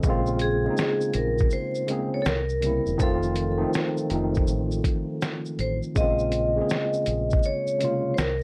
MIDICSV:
0, 0, Header, 1, 5, 480
1, 0, Start_track
1, 0, Key_signature, -5, "minor"
1, 0, Tempo, 740741
1, 22, Time_signature, 4, 2, 24, 8
1, 5463, End_track
2, 0, Start_track
2, 0, Title_t, "Vibraphone"
2, 0, Program_c, 0, 11
2, 269, Note_on_c, 0, 68, 73
2, 751, Note_on_c, 0, 70, 70
2, 760, Note_off_c, 0, 68, 0
2, 970, Note_off_c, 0, 70, 0
2, 990, Note_on_c, 0, 72, 82
2, 1355, Note_off_c, 0, 72, 0
2, 1387, Note_on_c, 0, 73, 80
2, 1436, Note_off_c, 0, 73, 0
2, 1439, Note_on_c, 0, 69, 58
2, 1466, Note_off_c, 0, 69, 0
2, 1472, Note_on_c, 0, 70, 84
2, 1954, Note_on_c, 0, 69, 88
2, 1961, Note_off_c, 0, 70, 0
2, 3631, Note_on_c, 0, 72, 82
2, 3678, Note_off_c, 0, 69, 0
2, 3737, Note_off_c, 0, 72, 0
2, 3871, Note_on_c, 0, 75, 101
2, 4831, Note_on_c, 0, 73, 89
2, 4855, Note_off_c, 0, 75, 0
2, 5277, Note_on_c, 0, 72, 64
2, 5287, Note_off_c, 0, 73, 0
2, 5306, Note_off_c, 0, 72, 0
2, 5308, Note_on_c, 0, 70, 89
2, 5463, Note_off_c, 0, 70, 0
2, 5463, End_track
3, 0, Start_track
3, 0, Title_t, "Tine electric piano"
3, 0, Program_c, 1, 4
3, 0, Control_c, 1, 64, 127
3, 0, Note_on_c, 1, 69, 57
3, 29, Note_on_c, 1, 49, 97
3, 31, Control_c, 1, 64, 0
3, 36, Note_on_c, 1, 56, 100
3, 47, Note_on_c, 1, 58, 85
3, 56, Note_on_c, 1, 60, 93
3, 62, Note_on_c, 1, 65, 109
3, 154, Control_c, 1, 64, 127
3, 167, Note_off_c, 1, 69, 0
3, 338, Note_off_c, 1, 49, 0
3, 342, Note_off_c, 1, 56, 0
3, 347, Note_off_c, 1, 58, 0
3, 352, Note_off_c, 1, 60, 0
3, 355, Note_off_c, 1, 65, 0
3, 417, Note_on_c, 1, 49, 73
3, 427, Note_on_c, 1, 56, 75
3, 435, Note_on_c, 1, 58, 71
3, 443, Note_on_c, 1, 60, 69
3, 455, Note_on_c, 1, 63, 92
3, 1100, Note_off_c, 1, 49, 0
3, 1105, Note_off_c, 1, 56, 0
3, 1109, Note_off_c, 1, 58, 0
3, 1113, Note_off_c, 1, 60, 0
3, 1119, Note_off_c, 1, 63, 0
3, 1208, Note_on_c, 1, 49, 79
3, 1217, Note_on_c, 1, 56, 67
3, 1227, Note_on_c, 1, 58, 73
3, 1235, Note_on_c, 1, 60, 76
3, 1246, Note_on_c, 1, 68, 84
3, 1455, Note_off_c, 1, 49, 0
3, 1460, Note_off_c, 1, 56, 0
3, 1464, Note_off_c, 1, 58, 0
3, 1468, Note_off_c, 1, 60, 0
3, 1469, Control_c, 1, 64, 0
3, 1474, Note_off_c, 1, 68, 0
3, 1570, Control_c, 1, 64, 127
3, 1691, Note_on_c, 1, 49, 72
3, 1701, Note_on_c, 1, 55, 64
3, 1711, Note_on_c, 1, 58, 66
3, 1719, Note_on_c, 1, 60, 66
3, 1728, Note_on_c, 1, 64, 77
3, 1906, Note_off_c, 1, 49, 0
3, 1911, Note_off_c, 1, 55, 0
3, 1916, Note_off_c, 1, 58, 0
3, 1920, Note_off_c, 1, 60, 0
3, 1924, Note_off_c, 1, 64, 0
3, 1929, Note_on_c, 1, 51, 104
3, 1937, Note_on_c, 1, 53, 92
3, 1948, Note_on_c, 1, 57, 94
3, 1951, Control_c, 1, 64, 0
3, 1955, Note_on_c, 1, 60, 82
3, 1966, Note_on_c, 1, 65, 115
3, 2075, Control_c, 1, 64, 127
3, 2248, Note_off_c, 1, 51, 0
3, 2252, Note_off_c, 1, 53, 0
3, 2258, Note_off_c, 1, 57, 0
3, 2261, Note_off_c, 1, 60, 0
3, 2267, Note_off_c, 1, 65, 0
3, 2315, Note_on_c, 1, 51, 82
3, 2322, Note_on_c, 1, 53, 70
3, 2332, Note_on_c, 1, 57, 67
3, 2343, Note_on_c, 1, 60, 75
3, 2351, Note_on_c, 1, 63, 87
3, 2606, Note_off_c, 1, 51, 0
3, 2610, Note_off_c, 1, 53, 0
3, 2614, Note_off_c, 1, 57, 0
3, 2620, Note_off_c, 1, 60, 0
3, 2624, Note_off_c, 1, 63, 0
3, 2653, Note_on_c, 1, 51, 71
3, 2663, Note_on_c, 1, 53, 63
3, 2672, Note_on_c, 1, 57, 69
3, 2681, Note_on_c, 1, 60, 62
3, 2690, Note_on_c, 1, 63, 74
3, 3468, Note_off_c, 1, 51, 0
3, 3473, Note_off_c, 1, 53, 0
3, 3478, Note_off_c, 1, 57, 0
3, 3482, Note_off_c, 1, 60, 0
3, 3487, Note_off_c, 1, 63, 0
3, 3857, Note_on_c, 1, 49, 97
3, 3866, Note_on_c, 1, 56, 93
3, 3871, Control_c, 1, 64, 0
3, 3874, Note_on_c, 1, 58, 91
3, 3884, Note_on_c, 1, 60, 88
3, 3892, Note_on_c, 1, 65, 99
3, 3991, Control_c, 1, 64, 127
3, 4172, Note_off_c, 1, 49, 0
3, 4177, Note_off_c, 1, 56, 0
3, 4181, Note_off_c, 1, 58, 0
3, 4185, Note_off_c, 1, 60, 0
3, 4189, Note_off_c, 1, 65, 0
3, 4249, Note_on_c, 1, 49, 78
3, 4258, Note_on_c, 1, 56, 76
3, 4268, Note_on_c, 1, 58, 69
3, 4277, Note_on_c, 1, 60, 69
3, 4285, Note_on_c, 1, 68, 88
3, 4936, Note_off_c, 1, 49, 0
3, 4941, Note_off_c, 1, 56, 0
3, 4946, Note_off_c, 1, 58, 0
3, 4950, Note_off_c, 1, 60, 0
3, 4954, Note_off_c, 1, 68, 0
3, 5046, Note_on_c, 1, 49, 82
3, 5056, Note_on_c, 1, 56, 74
3, 5064, Note_on_c, 1, 58, 65
3, 5073, Note_on_c, 1, 48, 70
3, 5082, Note_on_c, 1, 65, 88
3, 5294, Note_off_c, 1, 49, 0
3, 5299, Note_off_c, 1, 56, 0
3, 5303, Note_off_c, 1, 58, 0
3, 5307, Note_off_c, 1, 48, 0
3, 5309, Control_c, 1, 64, 0
3, 5312, Note_off_c, 1, 65, 0
3, 5406, Control_c, 1, 64, 127
3, 5463, End_track
4, 0, Start_track
4, 0, Title_t, "Fingered electric bass"
4, 0, Program_c, 2, 33
4, 23, Note_on_c, 2, 34, 98
4, 435, Note_off_c, 2, 34, 0
4, 743, Note_on_c, 2, 34, 89
4, 949, Note_off_c, 2, 34, 0
4, 1463, Note_on_c, 2, 36, 84
4, 1802, Note_off_c, 2, 36, 0
4, 1856, Note_on_c, 2, 28, 85
4, 1930, Note_off_c, 2, 28, 0
4, 1942, Note_on_c, 2, 29, 91
4, 2355, Note_off_c, 2, 29, 0
4, 2663, Note_on_c, 2, 29, 95
4, 2869, Note_off_c, 2, 29, 0
4, 2901, Note_on_c, 2, 33, 81
4, 3108, Note_off_c, 2, 33, 0
4, 3622, Note_on_c, 2, 33, 83
4, 3755, Note_off_c, 2, 33, 0
4, 3862, Note_on_c, 2, 34, 101
4, 4275, Note_off_c, 2, 34, 0
4, 4583, Note_on_c, 2, 34, 90
4, 4789, Note_off_c, 2, 34, 0
4, 5302, Note_on_c, 2, 36, 82
4, 5463, Note_off_c, 2, 36, 0
4, 5463, End_track
5, 0, Start_track
5, 0, Title_t, "Drums"
5, 19, Note_on_c, 9, 82, 67
5, 22, Note_on_c, 9, 36, 110
5, 84, Note_off_c, 9, 82, 0
5, 86, Note_off_c, 9, 36, 0
5, 169, Note_on_c, 9, 82, 42
5, 233, Note_off_c, 9, 82, 0
5, 254, Note_on_c, 9, 42, 55
5, 254, Note_on_c, 9, 82, 42
5, 319, Note_off_c, 9, 42, 0
5, 319, Note_off_c, 9, 82, 0
5, 499, Note_on_c, 9, 82, 64
5, 511, Note_on_c, 9, 38, 94
5, 564, Note_off_c, 9, 82, 0
5, 576, Note_off_c, 9, 38, 0
5, 653, Note_on_c, 9, 82, 44
5, 718, Note_off_c, 9, 82, 0
5, 736, Note_on_c, 9, 42, 66
5, 736, Note_on_c, 9, 82, 46
5, 800, Note_off_c, 9, 42, 0
5, 800, Note_off_c, 9, 82, 0
5, 894, Note_on_c, 9, 82, 43
5, 911, Note_on_c, 9, 36, 84
5, 959, Note_off_c, 9, 82, 0
5, 974, Note_on_c, 9, 82, 64
5, 976, Note_off_c, 9, 36, 0
5, 1038, Note_off_c, 9, 82, 0
5, 1132, Note_on_c, 9, 82, 45
5, 1197, Note_off_c, 9, 82, 0
5, 1219, Note_on_c, 9, 42, 63
5, 1219, Note_on_c, 9, 82, 46
5, 1284, Note_off_c, 9, 42, 0
5, 1284, Note_off_c, 9, 82, 0
5, 1460, Note_on_c, 9, 82, 65
5, 1465, Note_on_c, 9, 38, 102
5, 1525, Note_off_c, 9, 82, 0
5, 1529, Note_off_c, 9, 38, 0
5, 1614, Note_on_c, 9, 82, 40
5, 1679, Note_off_c, 9, 82, 0
5, 1700, Note_on_c, 9, 42, 64
5, 1700, Note_on_c, 9, 82, 47
5, 1765, Note_off_c, 9, 42, 0
5, 1765, Note_off_c, 9, 82, 0
5, 1854, Note_on_c, 9, 82, 36
5, 1919, Note_off_c, 9, 82, 0
5, 1940, Note_on_c, 9, 82, 71
5, 1943, Note_on_c, 9, 36, 102
5, 2005, Note_off_c, 9, 82, 0
5, 2007, Note_off_c, 9, 36, 0
5, 2090, Note_on_c, 9, 82, 40
5, 2155, Note_off_c, 9, 82, 0
5, 2175, Note_on_c, 9, 42, 61
5, 2175, Note_on_c, 9, 82, 41
5, 2239, Note_off_c, 9, 42, 0
5, 2239, Note_off_c, 9, 82, 0
5, 2419, Note_on_c, 9, 82, 59
5, 2432, Note_on_c, 9, 38, 88
5, 2484, Note_off_c, 9, 82, 0
5, 2496, Note_off_c, 9, 38, 0
5, 2574, Note_on_c, 9, 82, 46
5, 2639, Note_off_c, 9, 82, 0
5, 2657, Note_on_c, 9, 42, 65
5, 2657, Note_on_c, 9, 82, 46
5, 2722, Note_off_c, 9, 42, 0
5, 2722, Note_off_c, 9, 82, 0
5, 2816, Note_on_c, 9, 82, 41
5, 2833, Note_on_c, 9, 36, 84
5, 2881, Note_off_c, 9, 82, 0
5, 2897, Note_off_c, 9, 36, 0
5, 2898, Note_on_c, 9, 82, 64
5, 2963, Note_off_c, 9, 82, 0
5, 3054, Note_on_c, 9, 82, 44
5, 3119, Note_off_c, 9, 82, 0
5, 3138, Note_on_c, 9, 36, 89
5, 3140, Note_on_c, 9, 42, 66
5, 3140, Note_on_c, 9, 82, 44
5, 3203, Note_off_c, 9, 36, 0
5, 3205, Note_off_c, 9, 42, 0
5, 3205, Note_off_c, 9, 82, 0
5, 3380, Note_on_c, 9, 82, 64
5, 3385, Note_on_c, 9, 38, 103
5, 3445, Note_off_c, 9, 82, 0
5, 3450, Note_off_c, 9, 38, 0
5, 3534, Note_on_c, 9, 82, 43
5, 3599, Note_off_c, 9, 82, 0
5, 3621, Note_on_c, 9, 42, 59
5, 3621, Note_on_c, 9, 82, 43
5, 3686, Note_off_c, 9, 42, 0
5, 3686, Note_off_c, 9, 82, 0
5, 3774, Note_on_c, 9, 82, 39
5, 3839, Note_off_c, 9, 82, 0
5, 3860, Note_on_c, 9, 82, 70
5, 3862, Note_on_c, 9, 36, 111
5, 3924, Note_off_c, 9, 82, 0
5, 3927, Note_off_c, 9, 36, 0
5, 4009, Note_on_c, 9, 82, 42
5, 4074, Note_off_c, 9, 82, 0
5, 4094, Note_on_c, 9, 42, 58
5, 4094, Note_on_c, 9, 82, 42
5, 4159, Note_off_c, 9, 42, 0
5, 4159, Note_off_c, 9, 82, 0
5, 4337, Note_on_c, 9, 82, 60
5, 4349, Note_on_c, 9, 38, 93
5, 4402, Note_off_c, 9, 82, 0
5, 4414, Note_off_c, 9, 38, 0
5, 4492, Note_on_c, 9, 82, 43
5, 4557, Note_off_c, 9, 82, 0
5, 4575, Note_on_c, 9, 42, 63
5, 4575, Note_on_c, 9, 82, 47
5, 4640, Note_off_c, 9, 42, 0
5, 4640, Note_off_c, 9, 82, 0
5, 4733, Note_on_c, 9, 82, 43
5, 4751, Note_on_c, 9, 36, 82
5, 4797, Note_off_c, 9, 82, 0
5, 4813, Note_on_c, 9, 82, 66
5, 4815, Note_off_c, 9, 36, 0
5, 4878, Note_off_c, 9, 82, 0
5, 4971, Note_on_c, 9, 82, 45
5, 5035, Note_off_c, 9, 82, 0
5, 5058, Note_on_c, 9, 42, 61
5, 5058, Note_on_c, 9, 82, 45
5, 5122, Note_off_c, 9, 42, 0
5, 5122, Note_off_c, 9, 82, 0
5, 5298, Note_on_c, 9, 82, 66
5, 5303, Note_on_c, 9, 38, 101
5, 5363, Note_off_c, 9, 82, 0
5, 5368, Note_off_c, 9, 38, 0
5, 5463, End_track
0, 0, End_of_file